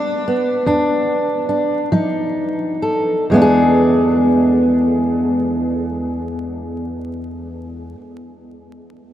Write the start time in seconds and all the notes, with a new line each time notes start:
Already playing: G#3 D4
0.28 B3
0.66 E2 D4
1.49 D4
1.92 F3 D#4
2.82 A4
3.30 E2 G#3 B3
3.35 D4
3.42 G#4